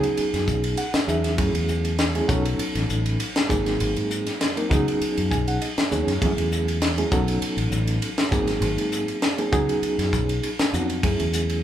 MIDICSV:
0, 0, Header, 1, 5, 480
1, 0, Start_track
1, 0, Tempo, 603015
1, 1103, Time_signature, 4, 2, 24, 8
1, 9261, End_track
2, 0, Start_track
2, 0, Title_t, "Reed electric piano"
2, 0, Program_c, 0, 4
2, 0, Note_on_c, 0, 54, 78
2, 0, Note_on_c, 0, 59, 73
2, 0, Note_on_c, 0, 61, 77
2, 0, Note_on_c, 0, 63, 77
2, 0, Note_on_c, 0, 68, 97
2, 618, Note_on_c, 0, 78, 66
2, 673, Note_off_c, 0, 54, 0
2, 673, Note_off_c, 0, 59, 0
2, 675, Note_off_c, 0, 61, 0
2, 675, Note_off_c, 0, 63, 0
2, 676, Note_off_c, 0, 68, 0
2, 739, Note_off_c, 0, 78, 0
2, 751, Note_on_c, 0, 75, 65
2, 853, Note_on_c, 0, 54, 81
2, 856, Note_off_c, 0, 75, 0
2, 856, Note_on_c, 0, 59, 78
2, 858, Note_on_c, 0, 63, 80
2, 858, Note_on_c, 0, 76, 66
2, 860, Note_on_c, 0, 61, 71
2, 860, Note_on_c, 0, 68, 86
2, 1038, Note_off_c, 0, 54, 0
2, 1040, Note_off_c, 0, 59, 0
2, 1041, Note_off_c, 0, 63, 0
2, 1042, Note_off_c, 0, 61, 0
2, 1042, Note_off_c, 0, 68, 0
2, 1084, Note_off_c, 0, 76, 0
2, 1097, Note_on_c, 0, 57, 72
2, 1097, Note_on_c, 0, 61, 69
2, 1099, Note_on_c, 0, 54, 76
2, 1100, Note_on_c, 0, 64, 76
2, 1102, Note_on_c, 0, 68, 81
2, 1544, Note_off_c, 0, 57, 0
2, 1544, Note_off_c, 0, 61, 0
2, 1545, Note_off_c, 0, 54, 0
2, 1545, Note_off_c, 0, 64, 0
2, 1546, Note_off_c, 0, 68, 0
2, 1709, Note_on_c, 0, 54, 80
2, 1712, Note_on_c, 0, 57, 75
2, 1712, Note_on_c, 0, 61, 74
2, 1714, Note_on_c, 0, 64, 77
2, 1715, Note_on_c, 0, 68, 95
2, 1807, Note_off_c, 0, 54, 0
2, 1811, Note_off_c, 0, 61, 0
2, 1816, Note_on_c, 0, 54, 82
2, 1816, Note_on_c, 0, 59, 70
2, 1819, Note_on_c, 0, 63, 78
2, 1820, Note_on_c, 0, 69, 94
2, 1821, Note_on_c, 0, 61, 78
2, 1824, Note_off_c, 0, 57, 0
2, 1825, Note_off_c, 0, 64, 0
2, 1826, Note_off_c, 0, 68, 0
2, 2592, Note_off_c, 0, 54, 0
2, 2592, Note_off_c, 0, 59, 0
2, 2593, Note_off_c, 0, 63, 0
2, 2594, Note_off_c, 0, 61, 0
2, 2594, Note_off_c, 0, 69, 0
2, 2776, Note_on_c, 0, 58, 82
2, 2778, Note_on_c, 0, 54, 91
2, 2779, Note_on_c, 0, 63, 86
2, 2780, Note_on_c, 0, 60, 77
2, 2784, Note_on_c, 0, 68, 96
2, 3456, Note_off_c, 0, 58, 0
2, 3457, Note_off_c, 0, 54, 0
2, 3457, Note_off_c, 0, 63, 0
2, 3458, Note_off_c, 0, 60, 0
2, 3460, Note_off_c, 0, 68, 0
2, 3630, Note_on_c, 0, 54, 79
2, 3632, Note_on_c, 0, 60, 70
2, 3633, Note_on_c, 0, 58, 77
2, 3637, Note_on_c, 0, 63, 80
2, 3639, Note_on_c, 0, 70, 85
2, 3729, Note_off_c, 0, 54, 0
2, 3736, Note_off_c, 0, 63, 0
2, 3738, Note_on_c, 0, 54, 83
2, 3740, Note_on_c, 0, 59, 83
2, 3742, Note_on_c, 0, 61, 83
2, 3745, Note_off_c, 0, 58, 0
2, 3745, Note_off_c, 0, 60, 0
2, 3745, Note_on_c, 0, 63, 82
2, 3746, Note_on_c, 0, 68, 90
2, 3748, Note_off_c, 0, 70, 0
2, 4225, Note_on_c, 0, 80, 66
2, 4344, Note_off_c, 0, 80, 0
2, 4360, Note_on_c, 0, 78, 64
2, 4461, Note_off_c, 0, 78, 0
2, 4472, Note_on_c, 0, 75, 60
2, 4513, Note_off_c, 0, 54, 0
2, 4514, Note_off_c, 0, 59, 0
2, 4515, Note_off_c, 0, 61, 0
2, 4517, Note_off_c, 0, 63, 0
2, 4517, Note_off_c, 0, 68, 0
2, 4692, Note_off_c, 0, 75, 0
2, 4706, Note_on_c, 0, 59, 77
2, 4708, Note_on_c, 0, 54, 82
2, 4710, Note_on_c, 0, 61, 77
2, 4710, Note_on_c, 0, 63, 73
2, 4710, Note_on_c, 0, 73, 72
2, 4711, Note_on_c, 0, 68, 98
2, 4886, Note_off_c, 0, 59, 0
2, 4887, Note_off_c, 0, 54, 0
2, 4888, Note_off_c, 0, 61, 0
2, 4888, Note_off_c, 0, 63, 0
2, 4889, Note_off_c, 0, 68, 0
2, 4931, Note_off_c, 0, 73, 0
2, 4941, Note_on_c, 0, 54, 78
2, 4944, Note_on_c, 0, 57, 73
2, 4945, Note_on_c, 0, 64, 67
2, 4948, Note_on_c, 0, 61, 68
2, 4948, Note_on_c, 0, 68, 92
2, 5386, Note_off_c, 0, 54, 0
2, 5388, Note_off_c, 0, 57, 0
2, 5388, Note_off_c, 0, 64, 0
2, 5390, Note_off_c, 0, 61, 0
2, 5390, Note_off_c, 0, 68, 0
2, 5554, Note_on_c, 0, 54, 82
2, 5555, Note_on_c, 0, 57, 72
2, 5557, Note_on_c, 0, 61, 72
2, 5558, Note_on_c, 0, 64, 71
2, 5558, Note_on_c, 0, 68, 89
2, 5657, Note_off_c, 0, 54, 0
2, 5660, Note_off_c, 0, 61, 0
2, 5666, Note_off_c, 0, 57, 0
2, 5667, Note_on_c, 0, 54, 88
2, 5667, Note_on_c, 0, 59, 80
2, 5668, Note_off_c, 0, 64, 0
2, 5668, Note_off_c, 0, 68, 0
2, 5668, Note_on_c, 0, 63, 79
2, 5669, Note_on_c, 0, 61, 70
2, 5672, Note_on_c, 0, 69, 94
2, 6437, Note_off_c, 0, 54, 0
2, 6437, Note_off_c, 0, 59, 0
2, 6437, Note_off_c, 0, 63, 0
2, 6438, Note_off_c, 0, 61, 0
2, 6439, Note_off_c, 0, 69, 0
2, 6618, Note_on_c, 0, 54, 93
2, 6621, Note_on_c, 0, 60, 81
2, 6622, Note_on_c, 0, 58, 80
2, 6624, Note_on_c, 0, 63, 87
2, 6624, Note_on_c, 0, 68, 99
2, 7296, Note_off_c, 0, 54, 0
2, 7297, Note_off_c, 0, 60, 0
2, 7298, Note_off_c, 0, 58, 0
2, 7299, Note_off_c, 0, 63, 0
2, 7299, Note_off_c, 0, 68, 0
2, 7465, Note_on_c, 0, 54, 75
2, 7467, Note_on_c, 0, 58, 69
2, 7467, Note_on_c, 0, 60, 75
2, 7471, Note_on_c, 0, 63, 75
2, 7473, Note_on_c, 0, 68, 88
2, 7568, Note_off_c, 0, 54, 0
2, 7574, Note_off_c, 0, 63, 0
2, 7575, Note_off_c, 0, 68, 0
2, 7577, Note_on_c, 0, 54, 86
2, 7580, Note_on_c, 0, 59, 79
2, 7581, Note_off_c, 0, 58, 0
2, 7581, Note_on_c, 0, 61, 80
2, 7582, Note_off_c, 0, 60, 0
2, 7584, Note_on_c, 0, 63, 75
2, 7585, Note_on_c, 0, 68, 94
2, 8351, Note_off_c, 0, 54, 0
2, 8352, Note_off_c, 0, 59, 0
2, 8353, Note_off_c, 0, 61, 0
2, 8354, Note_off_c, 0, 63, 0
2, 8355, Note_off_c, 0, 68, 0
2, 8543, Note_on_c, 0, 59, 80
2, 8544, Note_on_c, 0, 61, 74
2, 8545, Note_on_c, 0, 54, 81
2, 8549, Note_on_c, 0, 63, 81
2, 8549, Note_on_c, 0, 66, 86
2, 8723, Note_off_c, 0, 59, 0
2, 8723, Note_off_c, 0, 61, 0
2, 8724, Note_off_c, 0, 54, 0
2, 8726, Note_off_c, 0, 63, 0
2, 8726, Note_off_c, 0, 66, 0
2, 8784, Note_on_c, 0, 54, 78
2, 8786, Note_on_c, 0, 57, 73
2, 8787, Note_on_c, 0, 61, 74
2, 8790, Note_on_c, 0, 64, 69
2, 8790, Note_on_c, 0, 68, 83
2, 9226, Note_off_c, 0, 54, 0
2, 9227, Note_off_c, 0, 57, 0
2, 9228, Note_off_c, 0, 61, 0
2, 9229, Note_off_c, 0, 64, 0
2, 9229, Note_off_c, 0, 68, 0
2, 9261, End_track
3, 0, Start_track
3, 0, Title_t, "Fingered electric bass"
3, 0, Program_c, 1, 33
3, 267, Note_on_c, 1, 42, 84
3, 368, Note_off_c, 1, 42, 0
3, 379, Note_on_c, 1, 35, 79
3, 592, Note_off_c, 1, 35, 0
3, 860, Note_on_c, 1, 40, 88
3, 1100, Note_off_c, 1, 40, 0
3, 1100, Note_on_c, 1, 42, 92
3, 1214, Note_off_c, 1, 42, 0
3, 1222, Note_on_c, 1, 40, 79
3, 1749, Note_off_c, 1, 40, 0
3, 1821, Note_on_c, 1, 35, 86
3, 2034, Note_off_c, 1, 35, 0
3, 2191, Note_on_c, 1, 33, 89
3, 2291, Note_off_c, 1, 33, 0
3, 2302, Note_on_c, 1, 33, 87
3, 2515, Note_off_c, 1, 33, 0
3, 2787, Note_on_c, 1, 32, 79
3, 2998, Note_off_c, 1, 32, 0
3, 3028, Note_on_c, 1, 32, 90
3, 3139, Note_off_c, 1, 32, 0
3, 3161, Note_on_c, 1, 44, 77
3, 3369, Note_off_c, 1, 44, 0
3, 3747, Note_on_c, 1, 37, 75
3, 3859, Note_off_c, 1, 37, 0
3, 4121, Note_on_c, 1, 42, 73
3, 4217, Note_off_c, 1, 42, 0
3, 4231, Note_on_c, 1, 35, 79
3, 4440, Note_off_c, 1, 35, 0
3, 4712, Note_on_c, 1, 39, 71
3, 4824, Note_off_c, 1, 39, 0
3, 4835, Note_on_c, 1, 42, 74
3, 4948, Note_off_c, 1, 42, 0
3, 4951, Note_on_c, 1, 42, 92
3, 5061, Note_off_c, 1, 42, 0
3, 5070, Note_on_c, 1, 40, 72
3, 5594, Note_off_c, 1, 40, 0
3, 5668, Note_on_c, 1, 35, 80
3, 5878, Note_off_c, 1, 35, 0
3, 6025, Note_on_c, 1, 33, 91
3, 6128, Note_off_c, 1, 33, 0
3, 6137, Note_on_c, 1, 33, 88
3, 6352, Note_off_c, 1, 33, 0
3, 6621, Note_on_c, 1, 32, 75
3, 6834, Note_off_c, 1, 32, 0
3, 6857, Note_on_c, 1, 32, 102
3, 6973, Note_off_c, 1, 32, 0
3, 6980, Note_on_c, 1, 44, 73
3, 7197, Note_off_c, 1, 44, 0
3, 7581, Note_on_c, 1, 37, 68
3, 7695, Note_off_c, 1, 37, 0
3, 7947, Note_on_c, 1, 42, 82
3, 8048, Note_off_c, 1, 42, 0
3, 8063, Note_on_c, 1, 35, 80
3, 8275, Note_off_c, 1, 35, 0
3, 8545, Note_on_c, 1, 41, 85
3, 8779, Note_off_c, 1, 41, 0
3, 8779, Note_on_c, 1, 42, 96
3, 8893, Note_off_c, 1, 42, 0
3, 8920, Note_on_c, 1, 40, 72
3, 9261, Note_off_c, 1, 40, 0
3, 9261, End_track
4, 0, Start_track
4, 0, Title_t, "Muted fingered electric bass strokes"
4, 149, Note_on_c, 9, 29, 35
4, 228, Note_off_c, 9, 29, 0
4, 747, Note_on_c, 9, 29, 38
4, 826, Note_off_c, 9, 29, 0
4, 2058, Note_on_c, 9, 29, 33
4, 2138, Note_off_c, 9, 29, 0
4, 3989, Note_on_c, 9, 29, 33
4, 4068, Note_off_c, 9, 29, 0
4, 4598, Note_on_c, 9, 29, 33
4, 4678, Note_off_c, 9, 29, 0
4, 5903, Note_on_c, 9, 29, 36
4, 5982, Note_off_c, 9, 29, 0
4, 7819, Note_on_c, 9, 29, 37
4, 7898, Note_off_c, 9, 29, 0
4, 8432, Note_on_c, 9, 29, 37
4, 8512, Note_off_c, 9, 29, 0
4, 9261, End_track
5, 0, Start_track
5, 0, Title_t, "Drums"
5, 28, Note_on_c, 9, 51, 59
5, 107, Note_off_c, 9, 51, 0
5, 138, Note_on_c, 9, 51, 71
5, 218, Note_off_c, 9, 51, 0
5, 269, Note_on_c, 9, 51, 57
5, 271, Note_on_c, 9, 38, 32
5, 349, Note_off_c, 9, 51, 0
5, 350, Note_off_c, 9, 38, 0
5, 378, Note_on_c, 9, 44, 78
5, 380, Note_on_c, 9, 36, 72
5, 458, Note_off_c, 9, 44, 0
5, 460, Note_off_c, 9, 36, 0
5, 507, Note_on_c, 9, 51, 61
5, 586, Note_off_c, 9, 51, 0
5, 616, Note_on_c, 9, 51, 81
5, 695, Note_off_c, 9, 51, 0
5, 746, Note_on_c, 9, 51, 61
5, 748, Note_on_c, 9, 38, 106
5, 826, Note_off_c, 9, 51, 0
5, 827, Note_off_c, 9, 38, 0
5, 862, Note_on_c, 9, 44, 77
5, 942, Note_off_c, 9, 44, 0
5, 988, Note_on_c, 9, 51, 58
5, 990, Note_on_c, 9, 38, 29
5, 1068, Note_off_c, 9, 51, 0
5, 1070, Note_off_c, 9, 38, 0
5, 1100, Note_on_c, 9, 51, 81
5, 1101, Note_on_c, 9, 36, 96
5, 1179, Note_off_c, 9, 51, 0
5, 1180, Note_off_c, 9, 36, 0
5, 1232, Note_on_c, 9, 51, 56
5, 1312, Note_off_c, 9, 51, 0
5, 1342, Note_on_c, 9, 44, 76
5, 1421, Note_off_c, 9, 44, 0
5, 1470, Note_on_c, 9, 51, 55
5, 1549, Note_off_c, 9, 51, 0
5, 1581, Note_on_c, 9, 51, 77
5, 1583, Note_on_c, 9, 38, 103
5, 1661, Note_off_c, 9, 51, 0
5, 1662, Note_off_c, 9, 38, 0
5, 1712, Note_on_c, 9, 51, 55
5, 1791, Note_off_c, 9, 51, 0
5, 1822, Note_on_c, 9, 36, 100
5, 1822, Note_on_c, 9, 44, 77
5, 1901, Note_off_c, 9, 44, 0
5, 1902, Note_off_c, 9, 36, 0
5, 1954, Note_on_c, 9, 51, 64
5, 2033, Note_off_c, 9, 51, 0
5, 2064, Note_on_c, 9, 51, 80
5, 2144, Note_off_c, 9, 51, 0
5, 2191, Note_on_c, 9, 51, 59
5, 2193, Note_on_c, 9, 38, 30
5, 2271, Note_off_c, 9, 51, 0
5, 2272, Note_off_c, 9, 38, 0
5, 2304, Note_on_c, 9, 44, 79
5, 2384, Note_off_c, 9, 44, 0
5, 2433, Note_on_c, 9, 51, 55
5, 2513, Note_off_c, 9, 51, 0
5, 2546, Note_on_c, 9, 51, 78
5, 2626, Note_off_c, 9, 51, 0
5, 2673, Note_on_c, 9, 51, 61
5, 2674, Note_on_c, 9, 38, 108
5, 2752, Note_off_c, 9, 51, 0
5, 2754, Note_off_c, 9, 38, 0
5, 2786, Note_on_c, 9, 36, 85
5, 2788, Note_on_c, 9, 44, 84
5, 2866, Note_off_c, 9, 36, 0
5, 2867, Note_off_c, 9, 44, 0
5, 2916, Note_on_c, 9, 51, 48
5, 2917, Note_on_c, 9, 38, 30
5, 2995, Note_off_c, 9, 51, 0
5, 2997, Note_off_c, 9, 38, 0
5, 3027, Note_on_c, 9, 51, 74
5, 3106, Note_off_c, 9, 51, 0
5, 3156, Note_on_c, 9, 51, 51
5, 3236, Note_off_c, 9, 51, 0
5, 3268, Note_on_c, 9, 44, 78
5, 3348, Note_off_c, 9, 44, 0
5, 3395, Note_on_c, 9, 51, 58
5, 3397, Note_on_c, 9, 38, 29
5, 3475, Note_off_c, 9, 51, 0
5, 3476, Note_off_c, 9, 38, 0
5, 3509, Note_on_c, 9, 51, 73
5, 3511, Note_on_c, 9, 38, 92
5, 3589, Note_off_c, 9, 51, 0
5, 3590, Note_off_c, 9, 38, 0
5, 3639, Note_on_c, 9, 51, 54
5, 3718, Note_off_c, 9, 51, 0
5, 3750, Note_on_c, 9, 36, 107
5, 3753, Note_on_c, 9, 44, 81
5, 3830, Note_off_c, 9, 36, 0
5, 3833, Note_off_c, 9, 44, 0
5, 3884, Note_on_c, 9, 51, 55
5, 3964, Note_off_c, 9, 51, 0
5, 3992, Note_on_c, 9, 51, 68
5, 4072, Note_off_c, 9, 51, 0
5, 4119, Note_on_c, 9, 51, 55
5, 4199, Note_off_c, 9, 51, 0
5, 4230, Note_on_c, 9, 36, 77
5, 4235, Note_on_c, 9, 44, 85
5, 4310, Note_off_c, 9, 36, 0
5, 4315, Note_off_c, 9, 44, 0
5, 4359, Note_on_c, 9, 51, 56
5, 4439, Note_off_c, 9, 51, 0
5, 4470, Note_on_c, 9, 51, 73
5, 4550, Note_off_c, 9, 51, 0
5, 4599, Note_on_c, 9, 51, 62
5, 4600, Note_on_c, 9, 38, 98
5, 4678, Note_off_c, 9, 51, 0
5, 4680, Note_off_c, 9, 38, 0
5, 4709, Note_on_c, 9, 44, 80
5, 4788, Note_off_c, 9, 44, 0
5, 4840, Note_on_c, 9, 51, 60
5, 4842, Note_on_c, 9, 38, 29
5, 4920, Note_off_c, 9, 51, 0
5, 4921, Note_off_c, 9, 38, 0
5, 4949, Note_on_c, 9, 36, 100
5, 4953, Note_on_c, 9, 51, 84
5, 5029, Note_off_c, 9, 36, 0
5, 5032, Note_off_c, 9, 51, 0
5, 5078, Note_on_c, 9, 51, 60
5, 5158, Note_off_c, 9, 51, 0
5, 5190, Note_on_c, 9, 44, 85
5, 5269, Note_off_c, 9, 44, 0
5, 5319, Note_on_c, 9, 51, 57
5, 5399, Note_off_c, 9, 51, 0
5, 5426, Note_on_c, 9, 51, 77
5, 5428, Note_on_c, 9, 38, 97
5, 5506, Note_off_c, 9, 51, 0
5, 5507, Note_off_c, 9, 38, 0
5, 5555, Note_on_c, 9, 51, 59
5, 5634, Note_off_c, 9, 51, 0
5, 5665, Note_on_c, 9, 44, 86
5, 5666, Note_on_c, 9, 36, 102
5, 5745, Note_off_c, 9, 44, 0
5, 5746, Note_off_c, 9, 36, 0
5, 5795, Note_on_c, 9, 51, 63
5, 5874, Note_off_c, 9, 51, 0
5, 5906, Note_on_c, 9, 51, 78
5, 5986, Note_off_c, 9, 51, 0
5, 6032, Note_on_c, 9, 51, 65
5, 6111, Note_off_c, 9, 51, 0
5, 6142, Note_on_c, 9, 44, 86
5, 6222, Note_off_c, 9, 44, 0
5, 6268, Note_on_c, 9, 51, 62
5, 6347, Note_off_c, 9, 51, 0
5, 6385, Note_on_c, 9, 51, 75
5, 6465, Note_off_c, 9, 51, 0
5, 6509, Note_on_c, 9, 51, 61
5, 6511, Note_on_c, 9, 38, 98
5, 6589, Note_off_c, 9, 51, 0
5, 6591, Note_off_c, 9, 38, 0
5, 6623, Note_on_c, 9, 36, 92
5, 6623, Note_on_c, 9, 44, 79
5, 6703, Note_off_c, 9, 36, 0
5, 6703, Note_off_c, 9, 44, 0
5, 6746, Note_on_c, 9, 51, 51
5, 6747, Note_on_c, 9, 38, 27
5, 6825, Note_off_c, 9, 51, 0
5, 6827, Note_off_c, 9, 38, 0
5, 6860, Note_on_c, 9, 51, 73
5, 6939, Note_off_c, 9, 51, 0
5, 6990, Note_on_c, 9, 51, 54
5, 7070, Note_off_c, 9, 51, 0
5, 7101, Note_on_c, 9, 44, 83
5, 7180, Note_off_c, 9, 44, 0
5, 7229, Note_on_c, 9, 51, 51
5, 7309, Note_off_c, 9, 51, 0
5, 7340, Note_on_c, 9, 51, 65
5, 7342, Note_on_c, 9, 38, 98
5, 7420, Note_off_c, 9, 51, 0
5, 7421, Note_off_c, 9, 38, 0
5, 7469, Note_on_c, 9, 51, 54
5, 7548, Note_off_c, 9, 51, 0
5, 7582, Note_on_c, 9, 44, 86
5, 7583, Note_on_c, 9, 36, 96
5, 7661, Note_off_c, 9, 44, 0
5, 7662, Note_off_c, 9, 36, 0
5, 7714, Note_on_c, 9, 51, 57
5, 7794, Note_off_c, 9, 51, 0
5, 7824, Note_on_c, 9, 51, 67
5, 7904, Note_off_c, 9, 51, 0
5, 7952, Note_on_c, 9, 51, 56
5, 7954, Note_on_c, 9, 38, 30
5, 8032, Note_off_c, 9, 51, 0
5, 8033, Note_off_c, 9, 38, 0
5, 8063, Note_on_c, 9, 36, 84
5, 8066, Note_on_c, 9, 44, 86
5, 8143, Note_off_c, 9, 36, 0
5, 8146, Note_off_c, 9, 44, 0
5, 8192, Note_on_c, 9, 51, 54
5, 8272, Note_off_c, 9, 51, 0
5, 8305, Note_on_c, 9, 51, 74
5, 8385, Note_off_c, 9, 51, 0
5, 8432, Note_on_c, 9, 51, 61
5, 8433, Note_on_c, 9, 38, 114
5, 8511, Note_off_c, 9, 51, 0
5, 8513, Note_off_c, 9, 38, 0
5, 8546, Note_on_c, 9, 44, 76
5, 8626, Note_off_c, 9, 44, 0
5, 8673, Note_on_c, 9, 51, 54
5, 8753, Note_off_c, 9, 51, 0
5, 8783, Note_on_c, 9, 36, 100
5, 8783, Note_on_c, 9, 51, 81
5, 8862, Note_off_c, 9, 36, 0
5, 8862, Note_off_c, 9, 51, 0
5, 8912, Note_on_c, 9, 51, 58
5, 8992, Note_off_c, 9, 51, 0
5, 9021, Note_on_c, 9, 44, 76
5, 9101, Note_off_c, 9, 44, 0
5, 9150, Note_on_c, 9, 51, 57
5, 9230, Note_off_c, 9, 51, 0
5, 9261, End_track
0, 0, End_of_file